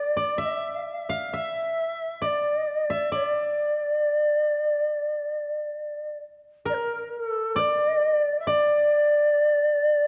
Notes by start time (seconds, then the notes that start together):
Already playing: A#4 D5
0.17 D5
0.38 E5
0.43 E5
1.09 F5
1.33 E5
2.22 D5
2.90 E5
3.12 C#5 D5
3.26 D5
6.65 A#4 D5
6.74 A#4
7.17 A4
7.56 D5
8.39 E5
8.47 D5